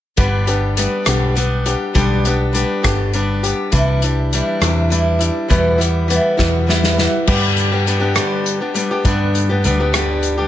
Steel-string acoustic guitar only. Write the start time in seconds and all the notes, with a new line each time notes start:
0.17 G2 D3 G3 B3 D4 G4
0.47 G3 B3 D4 G4
0.77 G3 B3 D4 G4
1.08 G2 D3 G3 B3 D4 G4
1.35 G3 B3 D4 G4
1.66 G3 B3 D4 G4
1.94 G2 D3 G3 B3 D4 G4
2.25 G3 B3 D4 G4
2.53 G3 B3 D4 G4
2.83 G2 D3 G3 B3 D4 G4
3.14 G3 B3 D4 G4
3.43 G3 B3 D4 G4
3.72 C3 E3 G3 D4 E4
4.03 G3 D4 E4
4.33 E3 G3 D4 E4
4.62 C3 E3 G3 D4 E4
4.90 E3 G3 D4 E4
5.19 G3 D4 E4
5.48 E2 B2 E3 G3 B3 E4
5.78 E3 G3 B3 E4
6.08 E3 G3 B3 E4
6.37 E2 B2 E3 G3 B3 E4
6.67 E3 G3 B3 E4
6.99 E3 G3 B3 E4
7.27 G2 D3 G3 B3 D4 G4
7.72 G3 B3 D4 G4
7.87 G3 B3 D4 G4
8.00 G3 B3 D4 G4
8.15 G2 D3 G3 B3 D4 G4
8.60 G3 B3 D4 G4
8.74 G3 B3 D4 G4
8.91 G3 B3 D4 G4
9.05 G2 D3 G3 B3 D4 G4
9.49 G3 B3 D4 G4
9.65 G3 B3 D4 G4
9.80 G3 B3 D4 G4
9.93 G2 D3 G3 B3 D4 G4
10.38 G3 B3 D4 G4